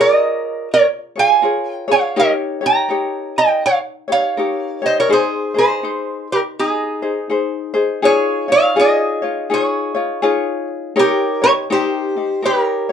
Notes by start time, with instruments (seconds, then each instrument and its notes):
Already playing: ukulele F4 G#4 A#4
0.00 resonator guitar played with a steel bar A#4 D#5, ukulele C#5
0.74 resonator guitar played with a steel bar A#4 C#5
1.16 ukulele F4 G#4 C#5, resonator guitar played with a steel bar F5 G#5
1.42 ukulele F4 G#4 A#4 C#5
1.70 resonator guitar played with a steel bar G5
1.88 ukulele F4 G#4 C#5, resonator guitar played with a steel bar F5
1.93 resonator guitar played with a steel bar C#5
2.16 ukulele D#4 G4 A#4 C#5, resonator guitar played with a steel bar D#5
2.21 resonator guitar played with a steel bar A#4
2.61 ukulele D#4 G4 C#5
2.66 resonator guitar played with a steel bar G5 A#5
2.89 ukulele D#4 G4 A#4 C#5
3.38 resonator guitar played with a steel bar D#5 G5
3.66 resonator guitar played with a steel bar C#5 F5
4.08 ukulele D#4 G4 C#5
4.12 resonator guitar played with a steel bar C#5 F5
4.37 ukulele D#4 G4 A#4 C#5
4.82 ukulele D#4 G4 C#5, resonator guitar played with a steel bar D#5
4.86 resonator guitar played with a steel bar C5
5.00 resonator guitar played with a steel bar A#4 C#5
5.09 ukulele D#4 G#4 C5, resonator guitar played with a steel bar C5
5.13 resonator guitar played with a steel bar G#4
5.54 ukulele D#4 G#4 C5
5.58 resonator guitar played with a steel bar G#4 C5
5.83 ukulele D#4 C5
6.32 resonator guitar played with a steel bar G4 A#4
6.59 resonator guitar played with a steel bar D#4 G#4
7.02 ukulele D#4 G#4 C5
7.30 ukulele D#4 G#4 C5
7.74 ukulele D#4 G#4 C5
8.02 ukulele D#4 F4 G#4 C#5, resonator guitar played with a steel bar G#4 C#5
8.48 ukulele D#4 F4 C#5, resonator guitar played with a steel bar F5
8.52 resonator guitar played with a steel bar C#5
8.76 ukulele D#4 F4 G#4 C#5, resonator guitar played with a steel bar D#5
8.81 resonator guitar played with a steel bar G#4
9.22 ukulele D#4 F4 C#5
9.50 ukulele D#4 F4 G#4 C#5, resonator guitar played with a steel bar G#4
9.54 resonator guitar played with a steel bar C#5
9.95 ukulele D#4 F4 C#5
10.22 ukulele D#4 F4 G#4 C#5
10.96 ukulele D#4 G4 A#4 C#5, resonator guitar played with a steel bar A#4
11.00 resonator guitar played with a steel bar G4
11.42 ukulele D#4 G4 C#5, resonator guitar played with a steel bar A#4 C#5
11.70 ukulele D#4 G4 A#4, resonator guitar played with a steel bar G4 C5
12.17 ukulele D#4 G4
12.43 ukulele D#4 G4 A#4 C#5, resonator guitar played with a steel bar G4 A#4